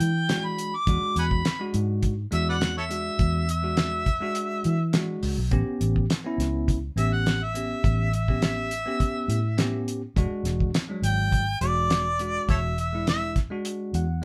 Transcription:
Already playing: tine electric piano E4, harmonica G5
0.00 fingered electric bass E3, closed hi-hat
0.29 tine electric piano G#3 D4 F#4, snare, closed hi-hat
0.46 harmonica B5
0.58 closed hi-hat
0.76 harmonica D6
0.87 fingered electric bass E2, tine electric piano G#3 D4 F#4, kick, closed hi-hat
1.02 muted fingered electric bass stroke
1.16 fingered electric bass E2, harmonica F#5 G#5 B5, closed hi-hat
1.31 kick
1.45 snare, closed hi-hat
1.59 tine electric piano G#3 D4 F#4
1.74 fingered electric bass G#2, closed hi-hat
2.03 kick, closed hi-hat
2.31 fingered electric bass E2, tine electric piano G#3 D4 F#4, harmonica E5, closed hi-hat
2.49 harmonica B4 D5 F#5
2.61 snare, closed hi-hat
2.78 harmonica A4 C#5 E5
2.89 tine electric piano G#3 D4 F#4, closed hi-hat
3.19 fingered electric bass E2, kick, closed hi-hat
3.49 harmonica E5, closed hi-hat
3.62 tine electric piano G#3 D4 F#4
3.77 snare, closed hi-hat
4.06 kick, closed hi-hat
4.21 tine electric piano G#3 D4 F#4
4.35 closed hi-hat
4.64 fingered electric bass E3, closed hi-hat
4.93 tine electric piano G#3 D4 F#4, snare, closed hi-hat
5.23 fingered electric bass C#2, open hi-hat
5.38 fingered electric bass B1
5.51 fingered electric bass A1, tine electric piano B3 C#4 G4, kick, closed hi-hat
5.66 muted fingered electric bass stroke
5.81 fingered electric bass A1, closed hi-hat
5.96 kick
6.10 snare, closed hi-hat
6.24 tine electric piano B3 C#4 E4
6.38 fingered electric bass C#2, snare, closed hi-hat
6.68 kick, closed hi-hat
6.96 fingered electric bass A1, tine electric piano B3 C#4 G4, harmonica E5, closed hi-hat
7.13 harmonica F#5
7.26 snare, closed hi-hat
7.43 harmonica E5
7.54 tine electric piano B3 C#4 G4, closed hi-hat
7.84 fingered electric bass A1, kick, closed hi-hat
8.13 harmonica E5, closed hi-hat
8.28 tine electric piano B3 C#4 G4, kick
8.42 snare, closed hi-hat
8.71 closed hi-hat
8.86 tine electric piano B3 C#4 G4
9.00 kick, closed hi-hat
9.28 fingered electric bass A2, closed hi-hat
9.58 tine electric piano B3 C#4 G4, snare, closed hi-hat
9.88 closed hi-hat
10.16 fingered electric bass E1, tine electric piano G#3 D4 F#4, kick, closed hi-hat
10.31 muted fingered electric bass stroke
10.44 fingered electric bass E1, snare, closed hi-hat
10.60 kick
10.74 snare, closed hi-hat
10.89 tine electric piano F#3 G#3 D4
11.02 fingered electric bass G#1, harmonica G5, closed hi-hat
11.32 kick, closed hi-hat
11.61 fingered electric bass E1, tine electric piano G#3 D4 F#4, harmonica D5, closed hi-hat
11.90 snare, closed hi-hat
12.19 tine electric piano G#3 D4 F#4, closed hi-hat
12.48 fingered electric bass E1, harmonica A4 C#5 E5, kick, closed hi-hat
12.78 harmonica E5, closed hi-hat
12.93 tine electric piano G#3 D4 E4
13.07 harmonica E5, snare, closed hi-hat
13.36 kick, snare, closed hi-hat
13.50 tine electric piano G#3 D4 F#4
13.65 closed hi-hat
13.93 fingered electric bass E2, tine electric piano F#5, closed hi-hat

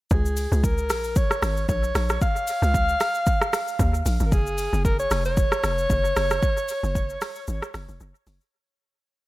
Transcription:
0.11 log drum bass C#2, alto saxophone G#4, kick, shaker
0.26 shaker
0.37 open hi-hat, shaker
0.52 log drum bass C#2, shaker
0.64 alto saxophone A#4, kick, shaker
0.78 shaker
0.90 log drum bass A#1, cross-stick, open hi-hat, shaker
1.04 shaker
1.16 alto saxophone C#5, kick, shaker
1.31 cross-stick, shaker
1.42 log drum bass G#1, cross-stick, open hi-hat, shaker
1.57 shaker
1.69 log drum bass A#1, alto saxophone C#5, kick, shaker
1.84 shaker
1.95 log drum bass A#1, cross-stick, open hi-hat, shaker
2.09 cross-stick, shaker
2.21 alto saxophone F5, kick, shaker
2.36 shaker
2.47 open hi-hat, shaker
2.62 log drum bass C#2, shaker
2.74 kick, shaker
2.89 shaker
3.00 cross-stick, open hi-hat, shaker
3.14 shaker
3.26 kick, shaker
3.41 cross-stick, shaker
3.53 cross-stick, open hi-hat, shaker
3.68 shaker
3.79 log drum bass D#2, kick, shaker
3.94 shaker
4.06 log drum bass A#1, open hi-hat, shaker
4.20 log drum bass G#1, shaker
4.26 alto saxophone A#4
4.32 log drum bass F#1, alto saxophone G#4, kick, shaker
4.47 shaker
4.58 open hi-hat, shaker
4.73 log drum bass F#1, shaker
4.85 alto saxophone A#4, kick, shaker
4.99 alto saxophone C#5, shaker
5.11 log drum bass F1, cross-stick, open hi-hat, shaker
5.25 alto saxophone C#5, shaker
5.37 kick, shaker
5.52 cross-stick, shaker
5.64 log drum bass F1, cross-stick, open hi-hat, shaker
5.78 shaker
5.90 log drum bass F#1, kick, shaker
6.05 shaker
6.16 log drum bass F#1, cross-stick, open hi-hat, shaker
6.30 cross-stick, shaker
6.42 kick, shaker
6.57 shaker
6.68 open hi-hat, shaker
6.83 log drum bass F#1, shaker
6.95 kick, shaker
7.10 shaker
7.21 cross-stick, open hi-hat, shaker
7.35 shaker
7.47 log drum bass G#1, shaker
7.62 cross-stick, shaker
7.74 log drum bass F#1, cross-stick, open hi-hat, shaker
7.89 log drum bass F1, shaker
8.00 log drum bass F#1, shaker
8.15 shaker
8.27 log drum bass F#1, open hi-hat, shaker
8.41 shaker

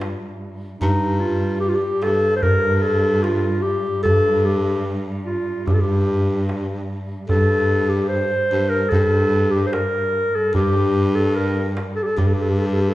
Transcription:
Already playing: baritone saxophone G2, cello G2
0.01 darbuka tek
0.81 baritone saxophone G2, cello G2, clarinet D#4, darbuka dum
1.20 clarinet F4, darbuka ka
1.60 clarinet G4, darbuka ka
1.69 clarinet F4
1.75 clarinet G4
2.02 baritone saxophone G2, clarinet A4, darbuka tek
2.36 clarinet C5
2.43 baritone saxophone G2, clarinet A#4, darbuka dum
2.76 clarinet A#4
2.83 clarinet A4, darbuka ka
3.04 darbuka ka
3.23 clarinet F4, darbuka tek
3.62 clarinet G4
4.03 baritone saxophone G2, clarinet A4, darbuka dum
4.45 clarinet G4
4.87 darbuka ka
5.08 darbuka ka
5.26 clarinet F4
5.67 baritone saxophone G2, clarinet G4, darbuka dum
5.74 clarinet A4
5.81 clarinet G4
6.29 darbuka ka
6.49 darbuka tek
7.28 baritone saxophone G2, cello G2, clarinet A4, darbuka dum
7.70 darbuka ka
7.89 clarinet G4
8.08 clarinet C5, darbuka ka
8.52 baritone saxophone G2
8.69 clarinet A#4
8.89 baritone saxophone G2, clarinet A4, darbuka dum
9.32 darbuka ka
9.51 clarinet G4, darbuka ka
9.67 clarinet C5
9.73 clarinet A#4, darbuka tek
10.35 clarinet A4
10.54 baritone saxophone G2, clarinet G4, darbuka dum
10.76 darbuka ka
10.96 darbuka ka
11.15 clarinet A4
11.35 clarinet A#4, darbuka ka
11.77 darbuka tek
11.96 clarinet A4
12.03 clarinet G4 A4
12.17 baritone saxophone G2, clarinet G4, darbuka dum
12.27 clarinet A4
12.34 clarinet G4
12.42 clarinet A4
12.50 clarinet G4
12.57 clarinet A4, darbuka ka
12.66 clarinet G4
12.74 clarinet A4
12.78 clarinet G4, darbuka ka
12.89 clarinet A4

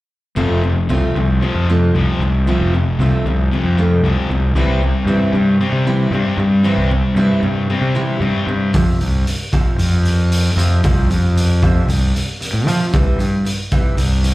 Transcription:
0.36 fingered electric bass F1, distorted electric guitar F2 C3 F3, steel-string acoustic guitar F3 A3 C4 F4
0.50 fingered electric bass F1
0.63 distorted electric guitar F2 C3, muted steel-string acoustic guitar stroke
0.89 fingered electric bass C2, distorted electric guitar F2 C3, steel-string acoustic guitar F3 A3 C4 F4
1.14 fingered electric bass C2, distorted electric guitar F2 C3, muted steel-string acoustic guitar stroke
1.41 distorted electric guitar F2 C3 F3, muted steel-string acoustic guitar stroke
1.55 fingered electric bass F2
1.68 distorted electric guitar F2 C3, steel-string acoustic guitar F3 A3 C4 F4
1.94 fingered electric bass C2, distorted electric guitar F2 C3 F3, muted steel-string acoustic guitar stroke
2.19 fingered electric bass C2, distorted electric guitar F2 C3, muted steel-string acoustic guitar stroke
2.47 distorted electric guitar F2 C3 F3, steel-string acoustic guitar F3 A3 C4 F4
2.59 fingered electric bass F1
2.74 distorted electric guitar F2 C3, muted steel-string acoustic guitar stroke
2.99 fingered electric bass C2, distorted electric guitar F2 C3, steel-string acoustic guitar F3 A3 C4 F4
3.25 fingered electric bass C2, distorted electric guitar F2 C3, muted steel-string acoustic guitar stroke
3.51 distorted electric guitar F2 C3 F3, muted steel-string acoustic guitar stroke
3.64 fingered electric bass F2
3.78 distorted electric guitar F2 C3, steel-string acoustic guitar F3 A3 C4 F4
4.02 fingered electric bass C2, distorted electric guitar F2 C3 F3, muted steel-string acoustic guitar stroke
4.29 fingered electric bass C2, distorted electric guitar F2 C3, muted steel-string acoustic guitar stroke
4.55 fingered electric bass C2, distorted electric guitar C3 G3 C4, steel-string acoustic guitar E3 G3 C4 E4
4.67 fingered electric bass C2
4.82 distorted electric guitar C3 G3, muted steel-string acoustic guitar stroke
5.06 fingered electric bass G2, distorted electric guitar C3 G3, steel-string acoustic guitar E3 G3 C4 E4
5.32 fingered electric bass G2, distorted electric guitar C3 G3, muted steel-string acoustic guitar stroke
5.60 distorted electric guitar C3 G3 C4, muted steel-string acoustic guitar stroke
5.72 fingered electric bass C3
5.87 distorted electric guitar C3 G3, steel-string acoustic guitar E3 G3 C4 E4
6.11 fingered electric bass G2, distorted electric guitar C3 G3 C4, muted steel-string acoustic guitar stroke
6.37 fingered electric bass G2, distorted electric guitar C3 G3, muted steel-string acoustic guitar stroke
6.64 distorted electric guitar C3 G3 C4, steel-string acoustic guitar E3 G3 C4 E4
6.77 fingered electric bass C2
6.91 distorted electric guitar C3 G3, muted steel-string acoustic guitar stroke
7.15 fingered electric bass G2, distorted electric guitar C3 G3, steel-string acoustic guitar E3 G3 C4 E4
7.42 fingered electric bass G2, distorted electric guitar C3 G3, muted steel-string acoustic guitar stroke
7.70 distorted electric guitar C3 G3 C4, muted steel-string acoustic guitar stroke
7.81 fingered electric bass C3
7.95 distorted electric guitar C3 G3, steel-string acoustic guitar E3 G3 C4 E4
8.20 fingered electric bass G2, distorted electric guitar C3 G3 C4, muted steel-string acoustic guitar stroke
8.47 fingered electric bass G2, distorted electric guitar C3 G3, muted steel-string acoustic guitar stroke
8.73 steel-string acoustic guitar F2 C3 F3, fingered electric bass F2, kick, open hi-hat
9.00 fingered electric bass C2, steel-string acoustic guitar F2 C3, open hi-hat
9.27 steel-string acoustic guitar F2 C3, open hi-hat
9.52 steel-string acoustic guitar F2 C3 F3, kick, open hi-hat
9.78 steel-string acoustic guitar F2 C3, fingered electric bass F2, open hi-hat
10.05 steel-string acoustic guitar F2 C3, open hi-hat
10.29 steel-string acoustic guitar F2 C3, open hi-hat
10.56 fingered electric bass F2, steel-string acoustic guitar F2 C3 F3, open hi-hat
10.84 fingered electric bass C2, steel-string acoustic guitar F2 C3 F3, kick, open hi-hat
11.10 fingered electric bass F2, steel-string acoustic guitar F2 C3, open hi-hat
11.35 steel-string acoustic guitar F2 C3, open hi-hat
11.62 steel-string acoustic guitar F2 C3 F3, kick, open hi-hat
11.88 fingered electric bass C2, steel-string acoustic guitar F2 C3, open hi-hat
12.15 steel-string acoustic guitar F2 C3, open hi-hat
12.40 steel-string acoustic guitar F2 C3, open hi-hat
12.53 fingered electric bass A2
12.67 steel-string acoustic guitar F2 C3 F3, fingered electric bass F3, open hi-hat
12.93 fingered electric bass C2, steel-string acoustic guitar C3 E3 G3, kick, open hi-hat
13.19 fingered electric bass G2, steel-string acoustic guitar C3 E3, open hi-hat
13.45 steel-string acoustic guitar C3 E3, open hi-hat
13.71 steel-string acoustic guitar C3 E3 G3, kick, open hi-hat
13.97 fingered electric bass C2, steel-string acoustic guitar C3 E3, open hi-hat
14.23 steel-string acoustic guitar C3 E3, open hi-hat

